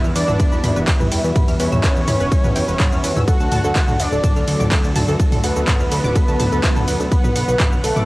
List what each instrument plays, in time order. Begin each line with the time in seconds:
Already playing: synth drone B2 F#4, analog synth pad E3 G3 B3, string section E3 E4 B4 E5
0.04 analog synth bass E2, synth arpeggio sound F6, shaker
0.16 analog synth bass E2, supersaw synth D4, synth arpeggio sound B4, analog synth lead D5, open hi-hat, shaker
0.28 analog synth bass E1, analog synth pad E3 G3 B3, synth arpeggio sound E6, mid tom, shaker
0.40 synth arpeggio sound B4, kick, ride, shaker
0.52 analog synth bass E2, synth arpeggio sound B5, shaker
0.64 analog synth bass E2, analog synth pad E3 G3 B3, synth arpeggio sound B5, mid tom, open hi-hat, shaker
0.76 analog synth bass E1, synth arpeggio sound B4, shaker
0.88 kick, clap, ride, shaker
1.00 analog synth bass E2, synth arpeggio sound B4, mid tom, shaker
1.12 analog synth bass E2, synth arpeggio sound G5, open hi-hat, shaker
1.24 analog synth bass E2, synth arpeggio sound B4, shaker
1.36 analog synth pad E3 G3 B3, synth arpeggio sound B5, kick, mid tom, ride, shaker
1.48 analog synth bass E2, synth arpeggio sound F6, open hi-hat, shaker
1.60 analog synth bass E2, supersaw synth C#4, synth arpeggio sound B4, analog synth lead C#5, open hi-hat, shaker
1.72 analog synth bass E2, synth arpeggio sound E6, mid tom, shaker
1.84 synth arpeggio sound B4, kick, clap, ride, shaker
1.96 analog synth bass E2, synth arpeggio sound B5, shaker
2.08 analog synth bass E2, synth arpeggio sound B5, mid tom, open hi-hat, shaker
2.20 analog synth bass E1, analog synth pad E3 G3 B3, synth arpeggio sound B4, shaker
2.32 kick, ride, shaker
2.44 analog synth bass E2, synth arpeggio sound B4, mid tom, shaker
2.56 analog synth bass E2, synth arpeggio sound G5, open hi-hat, shaker
2.68 analog synth bass E1, synth arpeggio sound B4, shaker
2.80 synth arpeggio sound B5, kick, clap, mid tom, ride, shaker
2.92 analog synth bass E2, synth arpeggio sound F6, shaker
3.04 analog synth bass E2, synth arpeggio sound B4, open hi-hat, shaker
3.16 analog synth bass E2, synth arpeggio sound E6, mid tom, shaker
3.28 analog synth pad D3 F#3 A3, string section D3 D4 F#4 A4, supersaw synth F#4, synth arpeggio sound A4, analog synth lead F#5, kick, ride, shaker
3.40 analog synth bass D2, synth arpeggio sound A5, shaker
3.52 analog synth bass D2, synth arpeggio sound A5, mid tom, open hi-hat, shaker
3.64 analog synth bass D2, synth arpeggio sound A4, shaker
3.76 kick, clap, ride, shaker
3.88 analog synth bass D2, synth arpeggio sound A4, mid tom, shaker
3.99 analog synth bass D2, supersaw synth D4, analog synth lead D5, synth arpeggio sound F#5, open hi-hat, shaker
4.12 analog synth bass D1, analog synth pad D3 F#3 A3, synth arpeggio sound A4, shaker
4.24 synth arpeggio sound A5, kick, mid tom, ride, shaker
4.36 analog synth bass D2, synth arpeggio sound F6, shaker
4.48 analog synth bass D2, analog synth pad D3 F#3 A3, synth arpeggio sound A4, open hi-hat, shaker
4.60 analog synth bass D1, synth arpeggio sound D6, mid tom, shaker
4.72 synth arpeggio sound A4, kick, clap, ride, shaker
4.84 analog synth bass D2, synth arpeggio sound A5, shaker
4.96 analog synth bass D2, synth arpeggio sound A5, mid tom, open hi-hat, shaker
5.08 analog synth bass D2, synth arpeggio sound A4, shaker
5.20 analog synth pad D3 F#3 A3, kick, ride, shaker
5.32 analog synth bass D2, synth arpeggio sound A4, mid tom, open hi-hat, shaker
5.44 analog synth bass D2, supersaw synth B3, analog synth lead B4, synth arpeggio sound F#5, open hi-hat, shaker
5.56 analog synth bass D2, synth arpeggio sound A4, shaker
5.68 synth arpeggio sound A5, kick, clap, mid tom, ride, shaker
5.80 analog synth bass D2, synth arpeggio sound F6, shaker
5.92 analog synth bass D2, synth arpeggio sound A4, open hi-hat, shaker
6.04 analog synth bass D1, analog synth pad D3 F#3 A3, synth arpeggio sound D6, mid tom, shaker
6.16 synth arpeggio sound A4, kick, ride, swell, shaker
6.28 analog synth bass D2, synth arpeggio sound A5, shaker
6.40 analog synth bass D2, synth arpeggio sound A5, mid tom, open hi-hat, shaker
6.52 analog synth bass D2, analog synth pad D3 F#3 A3, synth arpeggio sound A4, shaker
6.64 kick, clap, ride, shaker
6.76 analog synth bass D2, synth arpeggio sound A4, mid tom, shaker
6.88 analog synth bass D2, synth arpeggio sound F#5, open hi-hat, shaker
7.00 analog synth bass D2, synth arpeggio sound A4, shaker
7.11 synth drone B2 F#4, analog synth pad D3 F#3 B3, string section B3 B4 F#5, supersaw synth B3, analog synth lead B4, kick, ride, shaker
7.24 analog synth bass B1, synth arpeggio sound B4, mid tom, shaker
7.36 analog synth bass B1, synth arpeggio sound F#5, open hi-hat, shaker
7.48 analog synth bass B1, synth arpeggio sound B4, shaker
7.60 synth arpeggio sound B5, kick, clap, mid tom, ride, shaker
7.72 analog synth bass B1, synth arpeggio sound F6, shaker
7.84 analog synth bass B1, supersaw synth A3, analog synth lead A4, synth arpeggio sound B4, open hi-hat, shaker
7.96 analog synth bass F#1, analog synth pad D3 F#3 B3, synth arpeggio sound D6, mid tom, shaker